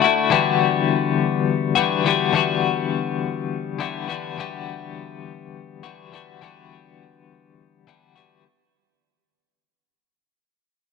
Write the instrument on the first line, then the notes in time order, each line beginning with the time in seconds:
clean electric guitar
0.02 D3 A3 E4 F#4
0.30 D3 E3 G3 B3
0.34 F#4
1.75 D3 E3 G3 B3 F#4
2.04 D3 E3 G3 B3 F#4
2.33 D3 E3 G3 B3 F#4
3.79 D3 E3 G3 B3 F#4
4.08 D3 E3 G3 B3 F#4
4.38 D3 E3 G3 B3 F#4
5.83 D3 E3 G3 B3 F#4
6.12 D3 E3 G3 B3 F#4
6.42 D3 E3 G3 B3 F#4
7.87 D3 E3 G3 B3 F#4
8.15 D3 E3 G3 B3 F#4